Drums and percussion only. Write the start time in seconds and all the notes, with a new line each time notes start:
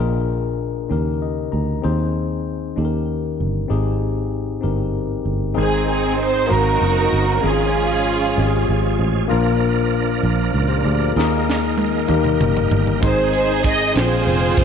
11.19 snare
11.50 snare
11.78 high tom
12.08 mid tom
12.24 mid tom
12.41 mid tom
12.57 floor tom
12.71 floor tom
12.87 floor tom
13.03 kick, closed hi-hat
13.34 closed hi-hat
13.64 kick, closed hi-hat
13.96 snare, closed hi-hat
14.28 closed hi-hat
14.57 kick, closed hi-hat